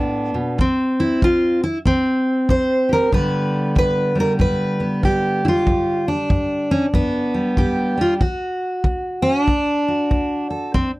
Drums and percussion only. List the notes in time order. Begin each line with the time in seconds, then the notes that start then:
0.59 kick
1.22 kick
1.86 kick
2.49 kick
3.13 kick
3.76 kick
4.40 kick
5.03 kick
5.67 kick
6.30 kick
6.94 kick
7.57 kick
8.21 kick
8.84 kick
9.48 kick
10.11 kick
10.74 kick